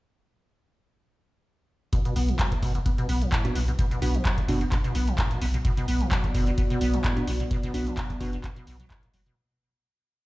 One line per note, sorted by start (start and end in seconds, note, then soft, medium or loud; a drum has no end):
1.93 2.00 B2 loud
1.93 kick loud
1.93 closed hi-hat medium
2.05 2.14 B2 loud
2.05 closed hi-hat soft
2.16 2.33 B1 medium
2.16 2.30 B3 medium
2.16 open hi-hat medium
2.29 2.37 E3 medium
2.29 closed hi-hat soft
2.39 2.53 F#3 medium
2.39 kick loud
2.39 clap loud
2.39 closed hi-hat medium
2.52 2.55 A2 medium
2.52 kick medium
2.52 closed hi-hat soft
2.62 2.80 F#1 medium
2.62 2.73 B2 medium
2.62 kick medium
2.62 open hi-hat medium
2.75 2.79 B2 medium
2.75 closed hi-hat soft
2.86 2.90 B3 medium
2.86 kick loud
2.86 closed hi-hat medium
2.98 3.07 B2 loud
2.98 closed hi-hat soft
3.09 3.26 B1 medium
3.09 3.23 B3 medium
3.09 open hi-hat medium
3.22 3.30 E3 medium
3.22 closed hi-hat soft
3.32 3.46 A2 medium
3.32 kick loud
3.32 clap loud
3.32 closed hi-hat medium
3.45 3.54 B2 medium
3.45 3.57 B3 medium
3.45 3.57 D4 medium
3.45 3.57 F#4 medium
3.45 closed hi-hat soft
3.55 3.73 B1 medium
3.55 3.60 B3 medium
3.55 open hi-hat loud
3.68 3.72 B2 medium
3.68 closed hi-hat soft
3.79 3.86 B2 medium
3.79 kick loud
3.79 closed hi-hat medium
3.91 4.00 B2 loud
3.91 closed hi-hat soft
4.02 4.19 B1 medium
4.02 4.16 B3 medium
4.02 4.16 D4 medium
4.02 4.16 F#4 medium
4.02 open hi-hat loud
4.14 4.23 E3 medium
4.14 closed hi-hat soft
4.25 4.39 F#3 medium
4.25 kick loud
4.25 clap loud
4.25 closed hi-hat medium
4.38 4.41 A2 loud
4.38 kick medium
4.38 closed hi-hat soft
4.48 4.66 F#1 medium
4.48 4.59 B2 medium
4.48 4.63 B3 medium
4.48 4.63 D4 medium
4.48 4.63 F#4 loud
4.48 kick medium
4.48 open hi-hat loud
4.61 4.65 B2 medium
4.61 closed hi-hat soft
4.72 4.76 B3 medium
4.72 kick loud
4.72 clap medium
4.72 closed hi-hat medium
4.84 4.93 B2 medium
4.84 closed hi-hat soft
4.95 5.12 B1 medium
4.95 5.09 B3 medium
4.95 open hi-hat loud
5.08 5.16 E3 medium
5.08 closed hi-hat soft
5.18 5.32 A2 medium
5.18 kick loud
5.18 clap loud
5.18 closed hi-hat medium
5.31 5.40 B2 medium
5.31 closed hi-hat soft
5.42 5.59 B1 medium
5.42 5.46 B3 medium
5.42 open hi-hat loud
5.54 5.58 B2 medium
5.54 closed hi-hat soft
5.65 5.72 B2 loud
5.65 9.33 B3 medium
5.65 9.33 F#4 medium
5.65 9.33 D5 medium
5.65 kick loud
5.65 closed hi-hat medium
5.77 5.86 B2 medium
5.77 closed hi-hat soft
5.88 6.05 B1 medium
5.88 6.02 B3 medium
5.88 open hi-hat loud
6.01 6.09 E3 medium
6.01 closed hi-hat soft
6.11 6.25 F#3 medium
6.11 kick loud
6.11 clap loud
6.11 closed hi-hat medium
6.24 6.27 A2 loud
6.24 kick medium
6.24 closed hi-hat soft
6.35 6.52 F#1 medium
6.35 6.45 B2 medium
6.35 kick medium
6.35 open hi-hat loud
6.47 6.51 B2 medium
6.47 closed hi-hat soft
6.58 6.62 B3 medium
6.58 kick loud
6.58 closed hi-hat medium
6.70 6.79 B2 loud
6.70 closed hi-hat soft
6.81 6.98 B1 medium
6.81 6.95 B3 medium
6.81 open hi-hat loud
6.94 7.02 E3 medium
6.94 closed hi-hat soft
7.04 7.18 A2 medium
7.04 kick loud
7.04 clap loud
7.04 closed hi-hat medium
7.17 7.26 B2 medium
7.17 7.29 B3 medium
7.17 7.29 D4 medium
7.17 7.29 F#4 medium
7.17 closed hi-hat soft
7.28 7.45 B1 medium
7.28 7.32 B3 medium
7.28 open hi-hat loud
7.40 7.44 B2 medium
7.40 closed hi-hat soft
7.51 7.58 B2 loud
7.51 kick loud
7.51 closed hi-hat medium
7.63 7.72 B2 loud
7.63 closed hi-hat soft
7.74 7.91 B1 medium
7.74 7.88 B3 medium
7.74 7.88 D4 medium
7.74 7.88 F#4 medium
7.74 open hi-hat loud
7.87 7.96 E3 medium
7.87 closed hi-hat soft
7.97 8.11 F#3 medium
7.97 kick loud
7.97 clap loud
7.97 closed hi-hat medium
8.10 8.13 A2 loud
8.10 kick medium
8.10 closed hi-hat soft
8.21 8.38 F#1 medium
8.21 8.31 B2 medium
8.21 8.35 B3 loud
8.21 8.35 D4 medium
8.21 8.35 F#4 loud
8.21 kick medium
8.21 open hi-hat loud
8.33 8.37 B2 medium
8.33 closed hi-hat soft
8.44 8.48 B3 medium
8.44 kick loud
8.44 clap medium
8.44 closed hi-hat medium
8.56 8.65 B2 medium
8.56 closed hi-hat soft
8.67 8.84 B1 loud
8.67 8.78 B2 loud
8.67 open hi-hat loud
8.80 8.86 F#3 medium
8.80 closed hi-hat soft
8.90 9.04 A2 medium
8.90 kick loud
8.90 clap loud
8.90 closed hi-hat medium
9.03 9.09 B2 medium
9.03 closed hi-hat soft
9.14 9.31 F#1 medium
9.14 9.21 F#3 medium
9.14 open hi-hat loud
9.26 9.35 B2 medium
9.26 closed hi-hat soft